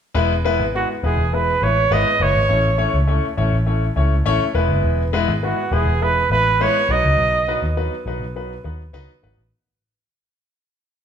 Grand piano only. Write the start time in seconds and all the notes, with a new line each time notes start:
0.14 G#3 B3 E4 B4
0.44 G#3 B3 E4 B4
0.75 G#3 B3 E4 B4
1.03 G#3 B3 E4 B4
1.33 G#3 B3 E4 B4
1.62 G#3 B3 E4 B4
1.91 G#3 B3 E4 B4
2.20 G#3 B3 E4 B4
2.49 A3 C#4 E4 C#5
2.78 A3 C#4 E4 C#5
3.07 A3 C#4 E4 C#5
3.37 A3 C#4 E4 C#5
3.66 A3 C#4 E4 C#5
3.96 A3 C#4 E4 C#5
4.26 A3 C#4 E4 C#5
4.54 G#3 B3 E4 B4
5.13 G#3 B3 E4 B4
5.42 G#3 B3 E4 B4
5.72 G#3 B3 E4 B4
6.01 G#3 B3 E4 B4
6.31 G#3 B3 E4 B4
6.60 G#3 B3 E4 B4
6.90 F#3 B3 D#4 B4
7.48 F#3 B3 D#4 B4
7.77 F#3 B3 D#4 B4
8.06 F#3 B3 D#4 B4
8.36 F#3 B3 D#4 B4
8.64 F#3 B3 D#4 B4
8.93 F#3 B3 D#4 B4
9.22 F#3 B3 D#4 B4